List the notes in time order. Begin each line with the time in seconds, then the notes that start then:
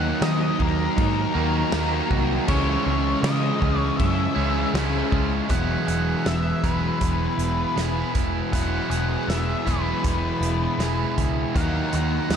Already playing: D#2 D#3 F#3 A#3 D#4 F#5
0.20 D#3 F#3 D#5, snare, crash
0.58 D#2 D#3 A#3 D#4 A#4, kick
0.96 G#2 D#4, kick, crash
1.34 D#2 D#3 F#3 A#3 D#4 F#4
1.71 D#2 D#3 F#3 A#3 D#4, snare, crash
2.10 C2 F#4, kick
2.47 C#2 C#3 E3 G#3 C#4 E4 C#5, kick, crash
2.85 C#2 G#3 C#5
3.22 C#3 E3 D#5, snare, crash
3.60 C#2 C#3 G#3 C#4, kick
3.80 C#5
3.97 F#2 C#4 E5, kick, crash
4.35 C#2 C#3 G#3 C#4 E4 G#4
4.73 C#2 C#3 G#3 C#4 E4, snare, crash
5.12 C#2 G#4, kick
5.49 E1 E2 B2 E3 F#3 G#3 B3 E4 F#5, kick, closed hi-hat
5.86 E1 G#4 F#5, closed hi-hat
6.24 E1 B3 E5, snare, closed hi-hat
6.62 E1 B2 F#3 G#3 B3 E4 B4, kick, closed hi-hat
6.66 E2 E3
7.00 E1 B3, kick, closed hi-hat
7.37 E1 E4, closed hi-hat
7.76 E1 E3 G#3 B3 E4 G#4, snare, closed hi-hat
8.14 E1 E4, kick, closed hi-hat
8.51 E1 E2 B2 E3 F#3 G#3 B3 F#5, kick, closed hi-hat
8.55 E4
8.89 E1 G#4 F#5, closed hi-hat
9.28 E1 B3 E5, snare, closed hi-hat
9.66 E1 E2 B2 E3 F#3 G#3 B3 E4 B4, kick, closed hi-hat
10.03 E1 B3, kick, closed hi-hat
10.40 E1 E4, closed hi-hat
10.78 E1 E3 G#3 B3 E4 G#4, snare, closed hi-hat
11.17 C#2 E4, kick, closed hi-hat
11.54 D#2 D#3 F#3 A#3 D#4 F#5, kick, closed hi-hat
11.92 D#2 D#4 F#5, closed hi-hat
12.29 D#2 F#3, snare, closed hi-hat